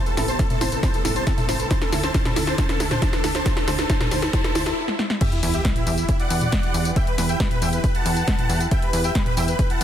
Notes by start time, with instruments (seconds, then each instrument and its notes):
Already playing: analog synth pad C3 G3 B3, riser
0.06 supersaw synth A4, synth arpeggio sound B4, closed hi-hat, tambourine
0.17 analog synth bass A1, synth arpeggio sound E4, supersaw synth A4, snare, open hi-hat, tambourine
0.28 synth arpeggio sound C5, supersaw synth C5 A5, closed hi-hat, tambourine
0.39 synth arpeggio sound E4, supersaw synth A4, kick, snare, closed hi-hat, tambourine
0.50 supersaw synth A4, synth arpeggio sound E5, closed hi-hat, mid tom, tambourine
0.61 analog synth bass A1, synth arpeggio sound E4, supersaw synth C5 A5, snare, open hi-hat, tambourine
0.72 supersaw synth A4, synth arpeggio sound B4, closed hi-hat, tambourine
0.83 synth arpeggio sound E4, supersaw synth C5 A5, kick, snare, closed hi-hat, tambourine
0.94 supersaw synth A4, synth arpeggio sound B4, closed hi-hat, tambourine
1.05 analog synth bass A1, synth arpeggio sound E4, supersaw synth A4, snare, open hi-hat, tambourine
1.16 supersaw synth C5 A5, synth arpeggio sound C5, closed hi-hat, tambourine
1.27 synth arpeggio sound E4, supersaw synth A4, kick, snare, closed hi-hat, tambourine
1.38 supersaw synth A4, synth arpeggio sound E5, closed hi-hat, mid tom, tambourine
1.49 analog synth bass A1, synth arpeggio sound E4, supersaw synth C5 A5, snare, open hi-hat, tambourine
1.60 supersaw synth A4, synth arpeggio sound B4, closed hi-hat, tambourine
1.71 analog synth pad D3 D4 E4 A4, synth arpeggio sound E4, supersaw synth C5 A5, kick, snare, closed hi-hat, tambourine
1.82 supersaw synth A4, synth arpeggio sound B4, snare, closed hi-hat, tambourine
1.92 analog synth bass D2, synth arpeggio sound E4, supersaw synth A4, snare, open hi-hat, tambourine
2.03 supersaw synth C5 A5, synth arpeggio sound C5, snare, closed hi-hat, tambourine
2.14 synth arpeggio sound E4, supersaw synth C5 A5, kick, snare, closed hi-hat, tambourine
2.25 supersaw synth A4, synth arpeggio sound B4, snare, closed hi-hat, mid tom, tambourine
2.36 analog synth bass D2, synth arpeggio sound E4, supersaw synth A4, snare, open hi-hat, tambourine
2.47 supersaw synth C5 A5, synth arpeggio sound C5, snare, closed hi-hat, tambourine
2.58 synth arpeggio sound E4, supersaw synth C5 A5, kick, snare, closed hi-hat, tambourine
2.69 supersaw synth A4, synth arpeggio sound B4, snare, closed hi-hat, tambourine
2.80 analog synth bass D2, synth arpeggio sound E4, supersaw synth A4, snare, open hi-hat, tambourine
2.91 synth arpeggio sound C5, supersaw synth C5 A5, snare, closed hi-hat, mid tom, tambourine
3.02 synth arpeggio sound E4, supersaw synth C5 A5, kick, snare, closed hi-hat, tambourine
3.13 supersaw synth A4, synth arpeggio sound B4, snare, closed hi-hat, tambourine
3.24 analog synth bass D2, synth arpeggio sound E4, supersaw synth A4, snare, open hi-hat, tambourine
3.35 supersaw synth C5 A5, synth arpeggio sound C5, snare, closed hi-hat, tambourine
3.46 synth arpeggio sound E4, supersaw synth C5 A5, kick, snare, closed hi-hat, tambourine
3.57 supersaw synth A4, synth arpeggio sound B4, snare, closed hi-hat, tambourine
3.68 analog synth bass D2, synth arpeggio sound E4, supersaw synth C5 A5, snare, open hi-hat, tambourine
3.79 supersaw synth A4, synth arpeggio sound B4, snare, closed hi-hat, tambourine
3.89 synth arpeggio sound E4, supersaw synth C5 A5, kick, snare, closed hi-hat, tambourine
4.00 supersaw synth A4, synth arpeggio sound B4, snare, closed hi-hat, mid tom, tambourine
4.11 analog synth bass D2, synth arpeggio sound E4, supersaw synth C5 A5, snare, open hi-hat, tambourine
4.22 supersaw synth A4, synth arpeggio sound B4, snare, closed hi-hat, tambourine
4.33 synth arpeggio sound E4, supersaw synth C5 A5, kick, snare, closed hi-hat, tambourine, swell
4.44 supersaw synth A4, synth arpeggio sound B4, snare, closed hi-hat, tambourine
4.55 analog synth bass D2, synth arpeggio sound E4, supersaw synth C5 A5, snare, open hi-hat, tambourine
4.66 supersaw synth A4, synth arpeggio sound B4, snare, closed hi-hat, tambourine
4.88 snare
4.99 snare
5.10 snare
5.21 analog synth pad E3 E4 G4 B4, supersaw synth G4 E5, kick, closed hi-hat, crash, tambourine, sub drop
5.32 supersaw synth E4, closed hi-hat
5.43 analog synth bass E2, supersaw synth E4, open hi-hat, tambourine
5.54 supersaw synth G4 E5, closed hi-hat, tambourine
5.65 supersaw synth E4, kick, snare, closed hi-hat, tambourine
5.76 supersaw synth E4, closed hi-hat, mid tom
5.87 analog synth bass E2, supersaw synth G4 E5, open hi-hat, tambourine
5.98 supersaw synth E4, closed hi-hat, tambourine
6.09 supersaw synth E4, kick, closed hi-hat, tambourine
6.20 supersaw synth D5 F#5, closed hi-hat
6.30 analog synth bass E2, open hi-hat, tambourine
6.41 closed hi-hat, mid tom, tambourine
6.52 kick, snare, closed hi-hat, tambourine
6.63 closed hi-hat
6.74 analog synth bass E2, open hi-hat, tambourine
6.85 closed hi-hat, tambourine
6.96 supersaw synth E5 G5, kick, closed hi-hat, tambourine
7.07 supersaw synth B4, closed hi-hat
7.18 analog synth bass E2, supersaw synth B4, snare, open hi-hat, tambourine
7.29 supersaw synth E5 G5, closed hi-hat, tambourine
7.40 supersaw synth B4, kick, snare, closed hi-hat, tambourine
7.51 supersaw synth B4, closed hi-hat, mid tom
7.62 analog synth bass E2, supersaw synth E5 G5, open hi-hat, tambourine
7.73 supersaw synth B4, closed hi-hat, tambourine
7.84 supersaw synth B4, kick, closed hi-hat, tambourine
7.95 supersaw synth F#5 A5, closed hi-hat
8.06 analog synth bass E2, open hi-hat, tambourine
8.17 closed hi-hat, tambourine
8.28 kick, snare, closed hi-hat, tambourine
8.39 closed hi-hat, mid tom
8.49 analog synth bass E2, open hi-hat, tambourine
8.61 closed hi-hat, tambourine
8.71 supersaw synth E5 G5, kick, closed hi-hat, tambourine
8.82 supersaw synth B4, closed hi-hat
8.93 analog synth bass E2, supersaw synth B4, open hi-hat, tambourine
9.04 supersaw synth E5 G5, closed hi-hat, tambourine
9.15 supersaw synth B4, kick, snare, closed hi-hat, tambourine
9.26 supersaw synth B4, closed hi-hat, mid tom
9.37 analog synth bass E2, supersaw synth E5 G5, open hi-hat, tambourine
9.48 supersaw synth B4, closed hi-hat, tambourine
9.59 supersaw synth B4, kick, closed hi-hat, tambourine
9.70 supersaw synth F#5 A5, closed hi-hat